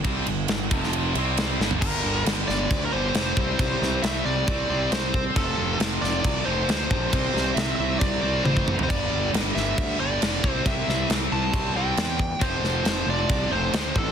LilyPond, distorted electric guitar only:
\new Staff \with { instrumentName = "Distorted electric guitar" } { \clef bass \time 4/4 \key c \mixolydian \tempo 4 = 136 <c g c'>8 <g, d>8 <g, d>8 <f, c f>4 <c g c'>4 <g, d g>8 | <g, d g>2~ <g, d g>8 <g, d g>8 <g, d g>8 <c g c'>8~ | <c g c'>2 <c g c'>8 <c g c'>4 r8 | <f, c f>2~ <f, c f>8 <f, c f>8 <f, c f>4 |
<c g c'>2~ <c g c'>8 <c g c'>8 <c g c'>4 | <g, d g>2~ <g, d g>8 <g, d g>8 <g, d g>8 <c g c'>8~ | <c g c'>2 <c g c'>8 <c g c'>4 r8 | <f, c f>2~ <f, c f>8 <f, c f>8 <f, c f>4 | }